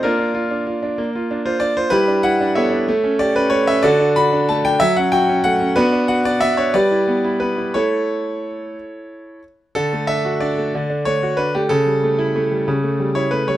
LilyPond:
\new Staff \with { instrumentName = "Grand piano" } { \time 6/8 \key bes \lydian \tempo 4. = 62 << { <d' f' bes'>2~ <d' f' bes'>16 c''16 d''16 c''16 | \key d \major <e' g' b'>8 fis''8 <a' cis'' e''>4 d''16 b'16 cis''16 e''16 | <fis' a' d''>8 b''8 a''16 g''16 e''16 fis''16 g''8 fis''8 | <d' fis' b'>8 fis''16 d''16 e''16 cis''16 <g' b' d''>4 b'8 |
<e' a' cis''>2~ <e' a' cis''>8 r8 | a'8 e''8 d''4 cis''8 b'16 g'16 | a'2~ a'16 cis''16 b'16 cis''16 | } \\ { bes16 d'16 f'16 d'16 f'16 d'16 bes16 f'16 d'16 f'16 d'16 f'16 | g16 d'16 e'16 d'16 b16 d'16 a16 cis'16 g'16 cis'16 a16 cis'16 | d16 d'16 fis'16 d'16 a16 d'16 fis16 cis'16 fis'16 cis'16 a16 cis'16 | b16 d'16 fis'16 d'16 b16 d'16 g16 e'16 b16 e'16 b16 e'16 |
a4. r4. | d16 a16 d'16 fis'16 d'16 a16 d16 d'16 a16 fis'16 d'16 a16 | cis16 g16 a16 e'16 a16 g16 cis16 a16 g16 e'16 a16 g16 | } >> }